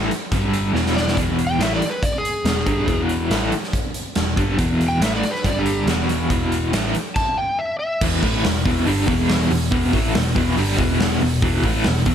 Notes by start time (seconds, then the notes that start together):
Already playing: A3
0.11 closed hi-hat
0.32 G1 G2 D3 G3, kick, closed hi-hat
0.54 closed hi-hat
0.73 E1 E2 B2 E3, snare
0.86 snare
0.96 D5, snare
1.08 snare
1.17 E1 E2 B2 E3, kick, closed hi-hat
1.39 closed hi-hat
1.47 G5
1.59 A1 A2 E3 A3 E5, snare, closed hi-hat
1.76 D5
1.82 closed hi-hat
1.90 B4
2.03 D5, kick, closed hi-hat
2.18 G#4
2.25 closed hi-hat
2.45 E1 E2 B2, snare, closed hi-hat
2.66 G1 G2 D3 G3, kick, closed hi-hat
2.87 E1 E2 B2 E3, kick, closed hi-hat
3.09 closed hi-hat
3.30 A1 A2 E3 A3, snare, closed hi-hat
3.52 closed hi-hat
3.64 snare
3.73 kick, closed hi-hat
3.94 closed hi-hat
4.15 E1 E2 B2, snare, closed hi-hat
4.36 G1 G2 D3 G3, kick, closed hi-hat
4.58 E1 E2 B2 E3, kick, closed hi-hat
4.81 closed hi-hat
4.88 G5
5.01 A1 A2 E3 A3 E5, snare, closed hi-hat
5.16 D5
5.23 closed hi-hat
5.31 B4
5.35 snare
5.44 G1 G2 D3 G3 D5, kick, closed hi-hat
5.59 G4
5.66 closed hi-hat
5.87 E1 E2 B2 E3, snare, closed hi-hat
6.09 closed hi-hat
6.30 E1 E2 B2 E3, kick, closed hi-hat
6.52 closed hi-hat
6.73 A1 A2 E3 A3, snare, closed hi-hat
6.95 closed hi-hat
7.16 A5, kick, crash
7.38 G5
7.59 E5
7.79 E5
8.01 E1 E2 B2 E3, kick, crash
8.22 A1 A2 E3 A3, kick, open hi-hat
8.44 E1 E2 B2, snare, open hi-hat
8.65 E1 E2 B2 E3, kick, open hi-hat
8.87 G1 G2 D3 G3, open hi-hat
9.07 E1 E2 B2 E3, kick, open hi-hat
9.29 snare, open hi-hat
9.50 E1 E2 B2, open hi-hat
9.71 E1 E2 B2 E3, kick
9.93 A1 A2 E3 A3, kick, open hi-hat
10.14 E1 E2 B2, snare, open hi-hat
10.35 E1 E2 B2 E3, kick, open hi-hat
10.57 G1 G2 D3 G3, open hi-hat
10.78 E1 E2 B2 E3, kick, open hi-hat
11.00 snare, open hi-hat
11.21 E1 E2 B2, open hi-hat
11.42 E1 E2 B2 E3, kick, open hi-hat
11.63 A1 A2 E3 A3, kick, open hi-hat
11.84 E1 E2 B2, snare, open hi-hat
12.06 E1 E2 B2 E3, kick, open hi-hat